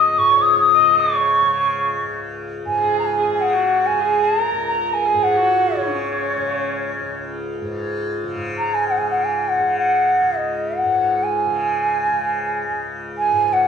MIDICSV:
0, 0, Header, 1, 4, 480
1, 0, Start_track
1, 0, Tempo, 500000
1, 13130, End_track
2, 0, Start_track
2, 0, Title_t, "Bansuri"
2, 0, Program_c, 0, 73
2, 0, Note_on_c, 0, 87, 87
2, 176, Note_on_c, 0, 85, 84
2, 190, Note_off_c, 0, 87, 0
2, 403, Note_on_c, 0, 87, 85
2, 417, Note_off_c, 0, 85, 0
2, 564, Note_off_c, 0, 87, 0
2, 570, Note_on_c, 0, 87, 86
2, 963, Note_on_c, 0, 85, 78
2, 977, Note_off_c, 0, 87, 0
2, 1939, Note_off_c, 0, 85, 0
2, 2556, Note_on_c, 0, 80, 79
2, 2851, Note_off_c, 0, 80, 0
2, 2870, Note_on_c, 0, 82, 60
2, 2933, Note_on_c, 0, 80, 86
2, 2947, Note_off_c, 0, 82, 0
2, 3203, Note_off_c, 0, 80, 0
2, 3209, Note_on_c, 0, 80, 61
2, 3271, Note_on_c, 0, 78, 86
2, 3286, Note_off_c, 0, 80, 0
2, 3709, Note_on_c, 0, 80, 89
2, 3724, Note_off_c, 0, 78, 0
2, 4072, Note_on_c, 0, 81, 87
2, 4086, Note_off_c, 0, 80, 0
2, 4216, Note_off_c, 0, 81, 0
2, 4216, Note_on_c, 0, 82, 87
2, 4476, Note_off_c, 0, 82, 0
2, 4481, Note_on_c, 0, 82, 89
2, 4738, Note_on_c, 0, 80, 87
2, 4752, Note_off_c, 0, 82, 0
2, 5024, Note_on_c, 0, 78, 85
2, 5038, Note_off_c, 0, 80, 0
2, 5541, Note_on_c, 0, 73, 77
2, 5556, Note_off_c, 0, 78, 0
2, 6926, Note_off_c, 0, 73, 0
2, 8240, Note_on_c, 0, 82, 83
2, 8393, Note_on_c, 0, 80, 76
2, 8408, Note_off_c, 0, 82, 0
2, 8515, Note_off_c, 0, 80, 0
2, 8521, Note_on_c, 0, 78, 71
2, 8621, Note_on_c, 0, 80, 75
2, 8636, Note_off_c, 0, 78, 0
2, 8732, Note_off_c, 0, 80, 0
2, 8738, Note_on_c, 0, 78, 74
2, 8874, Note_on_c, 0, 80, 72
2, 8888, Note_off_c, 0, 78, 0
2, 9106, Note_on_c, 0, 78, 78
2, 9120, Note_off_c, 0, 80, 0
2, 9389, Note_off_c, 0, 78, 0
2, 9395, Note_on_c, 0, 78, 84
2, 9957, Note_on_c, 0, 75, 77
2, 9971, Note_off_c, 0, 78, 0
2, 10337, Note_on_c, 0, 78, 84
2, 10351, Note_off_c, 0, 75, 0
2, 10786, Note_on_c, 0, 80, 80
2, 10800, Note_off_c, 0, 78, 0
2, 12268, Note_off_c, 0, 80, 0
2, 12652, Note_on_c, 0, 80, 90
2, 12989, Note_on_c, 0, 78, 94
2, 13003, Note_off_c, 0, 80, 0
2, 13130, Note_off_c, 0, 78, 0
2, 13130, End_track
3, 0, Start_track
3, 0, Title_t, "Sarangi"
3, 0, Program_c, 1, 110
3, 0, Note_on_c, 1, 75, 63
3, 308, Note_on_c, 1, 73, 64
3, 323, Note_off_c, 1, 75, 0
3, 710, Note_off_c, 1, 73, 0
3, 715, Note_on_c, 1, 75, 61
3, 1104, Note_on_c, 1, 73, 53
3, 1118, Note_off_c, 1, 75, 0
3, 2063, Note_off_c, 1, 73, 0
3, 2672, Note_on_c, 1, 68, 56
3, 3025, Note_off_c, 1, 68, 0
3, 3049, Note_on_c, 1, 68, 59
3, 3396, Note_on_c, 1, 66, 58
3, 3410, Note_off_c, 1, 68, 0
3, 3844, Note_on_c, 1, 68, 62
3, 3858, Note_off_c, 1, 66, 0
3, 4201, Note_on_c, 1, 70, 64
3, 4216, Note_off_c, 1, 68, 0
3, 4601, Note_off_c, 1, 70, 0
3, 4606, Note_on_c, 1, 70, 55
3, 4859, Note_on_c, 1, 68, 61
3, 4874, Note_off_c, 1, 70, 0
3, 5148, Note_on_c, 1, 66, 64
3, 5162, Note_off_c, 1, 68, 0
3, 5664, Note_on_c, 1, 61, 57
3, 5678, Note_off_c, 1, 66, 0
3, 7041, Note_off_c, 1, 61, 0
3, 13130, End_track
4, 0, Start_track
4, 0, Title_t, "Tanpura"
4, 0, Program_c, 2, 104
4, 0, Note_on_c, 2, 37, 52
4, 0, Note_on_c, 2, 44, 51
4, 0, Note_on_c, 2, 49, 50
4, 166, Note_off_c, 2, 44, 0
4, 166, Note_on_c, 2, 44, 57
4, 753, Note_off_c, 2, 49, 0
4, 757, Note_on_c, 2, 49, 58
4, 1358, Note_off_c, 2, 49, 0
4, 1358, Note_on_c, 2, 49, 54
4, 1945, Note_off_c, 2, 37, 0
4, 1948, Note_on_c, 2, 37, 51
4, 2542, Note_off_c, 2, 44, 0
4, 2546, Note_on_c, 2, 44, 56
4, 3137, Note_off_c, 2, 49, 0
4, 3137, Note_on_c, 2, 49, 54
4, 3734, Note_off_c, 2, 49, 0
4, 3734, Note_on_c, 2, 49, 54
4, 4322, Note_off_c, 2, 37, 0
4, 4326, Note_on_c, 2, 37, 59
4, 4926, Note_off_c, 2, 44, 0
4, 4930, Note_on_c, 2, 44, 61
4, 5528, Note_off_c, 2, 49, 0
4, 5528, Note_on_c, 2, 49, 58
4, 6116, Note_off_c, 2, 49, 0
4, 6116, Note_on_c, 2, 49, 59
4, 6714, Note_off_c, 2, 37, 0
4, 6718, Note_on_c, 2, 37, 55
4, 7305, Note_off_c, 2, 44, 0
4, 7309, Note_on_c, 2, 44, 61
4, 7904, Note_off_c, 2, 49, 0
4, 7904, Note_on_c, 2, 49, 61
4, 8029, Note_off_c, 2, 44, 0
4, 8029, Note_on_c, 2, 44, 52
4, 8612, Note_off_c, 2, 49, 0
4, 8612, Note_on_c, 2, 49, 54
4, 9210, Note_off_c, 2, 49, 0
4, 9210, Note_on_c, 2, 49, 51
4, 9795, Note_off_c, 2, 37, 0
4, 9799, Note_on_c, 2, 37, 53
4, 10401, Note_off_c, 2, 44, 0
4, 10401, Note_on_c, 2, 44, 51
4, 11000, Note_off_c, 2, 49, 0
4, 11004, Note_on_c, 2, 49, 57
4, 11595, Note_off_c, 2, 49, 0
4, 11595, Note_on_c, 2, 49, 52
4, 12182, Note_off_c, 2, 37, 0
4, 12186, Note_on_c, 2, 37, 51
4, 12785, Note_off_c, 2, 44, 0
4, 12789, Note_on_c, 2, 44, 54
4, 13130, Note_off_c, 2, 37, 0
4, 13130, Note_off_c, 2, 44, 0
4, 13130, Note_off_c, 2, 49, 0
4, 13130, End_track
0, 0, End_of_file